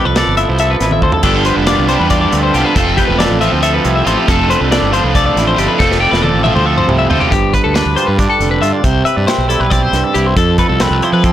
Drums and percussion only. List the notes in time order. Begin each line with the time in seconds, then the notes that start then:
0.16 snare, closed hi-hat
0.37 closed hi-hat
0.58 closed hi-hat
0.80 snare, closed hi-hat
0.91 high tom
1.02 kick
1.12 floor tom
1.23 kick, closed hi-hat, crash
1.45 closed hi-hat
1.67 snare, closed hi-hat
1.89 closed hi-hat
2.10 kick, closed hi-hat
2.32 closed hi-hat
2.54 closed hi-hat
2.76 kick, closed hi-hat
2.98 kick, closed hi-hat
3.20 snare, closed hi-hat
3.41 closed hi-hat
3.63 closed hi-hat
3.85 closed hi-hat
4.07 closed hi-hat
4.28 kick, closed hi-hat
4.50 closed hi-hat
4.72 snare, closed hi-hat
4.93 closed hi-hat
5.15 kick, closed hi-hat
5.37 snare, closed hi-hat
5.58 closed hi-hat
5.80 kick, snare
5.91 snare
6.13 snare
6.24 high tom
6.46 mid tom
6.57 mid tom
6.78 mid tom
6.89 mid tom
7.11 floor tom
7.21 floor tom
7.32 kick, closed hi-hat
7.54 kick, closed hi-hat
7.75 snare, closed hi-hat
7.97 closed hi-hat
8.19 kick, closed hi-hat
8.41 closed hi-hat
8.63 closed hi-hat
8.84 kick, closed hi-hat
9.06 closed hi-hat
9.28 snare, closed hi-hat
9.50 closed hi-hat
9.71 kick, snare, closed hi-hat
9.93 snare, closed hi-hat
10.15 closed hi-hat
10.37 kick, closed hi-hat
10.58 kick, closed hi-hat
10.80 snare, closed hi-hat
11.02 closed hi-hat
11.24 kick, closed hi-hat